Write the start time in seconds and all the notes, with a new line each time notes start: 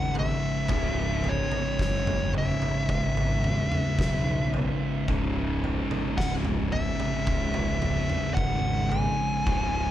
Already playing: G#1 C#2 G#2 C#3 F#5
0.15 E5, floor tom
0.68 C#1 C#2 G#2 C#3, kick, floor tom
1.24 floor tom
1.29 C#5
1.52 floor tom
1.79 F#1 C#5, kick, snare
2.07 floor tom, mid tom
2.34 E5, floor tom
2.62 floor tom
2.89 G#1, kick, floor tom
3.17 floor tom
3.44 mid tom
3.72 mid tom
3.98 B1, kick, snare, mid tom
4.54 floor tom
5.06 C#1 C#2 G#2 C#3, kick, floor tom
5.64 floor tom
5.91 floor tom
6.18 C#1 F#5, kick, snare
6.45 floor tom, mid tom
6.72 E5, floor tom
7.00 floor tom
7.27 C#1, kick, floor tom
7.54 floor tom
7.82 floor tom, mid tom
8.10 mid tom
8.34 G#1 F#5, kick, mid tom
8.90 G#5, floor tom
9.46 C#1 C#2 G#2 C#3, kick, floor tom